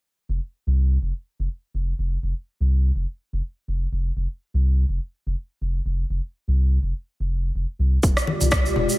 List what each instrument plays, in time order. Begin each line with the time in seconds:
0.29 sub bass F1
0.67 sub bass C2
1.02 sub bass F1
1.39 sub bass F1
1.74 sub bass F1
1.99 sub bass F1
2.23 sub bass F1
2.60 sub bass C2
2.95 sub bass F1
3.33 sub bass F1
3.68 sub bass F1
3.92 sub bass F1
4.16 sub bass F1
4.54 sub bass C2
4.89 sub bass F1
5.27 sub bass F1
5.61 sub bass F1
5.86 sub bass F1
6.10 sub bass F1
6.48 sub bass C2
6.83 sub bass F1
7.20 sub bass F1
7.55 sub bass F1
7.79 sub bass C2
8.03 sub bass F1, ambient pad G#3 F4 G4 D5, kick, shaker
8.17 cross-stick, shaker
8.27 high conga
8.41 sub bass C2, high conga, low conga, shaker
8.51 kick, cross-stick, shaker
8.66 shaker
8.76 sub bass F1, low conga
8.89 shaker